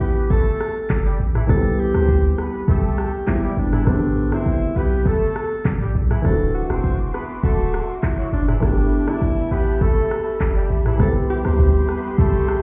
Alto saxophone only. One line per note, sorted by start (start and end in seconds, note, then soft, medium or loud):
0.01 0.32 G4 loud
0.31 1.20 A4 loud
1.50 1.81 A4 loud
1.80 2.39 G4 loud
2.69 2.96 G4 loud
2.99 3.30 G4 medium
3.29 3.60 E4 loud
3.59 3.87 D4 medium
3.88 4.34 D4 loud
4.33 4.79 E4 loud
4.77 5.08 G4 loud
5.07 5.96 A4 loud
6.25 6.52 A4 loud
6.55 7.10 F#4 loud
7.44 8.05 F#4 loud
8.03 8.33 E4 medium
8.33 8.46 D4 medium
8.63 9.10 D4 loud
9.08 9.53 E4 loud
9.52 9.83 G4 loud
9.82 10.71 A4 loud
11.01 11.14 A4 loud
11.30 12.15 G4 loud
12.19 12.62 G4 loud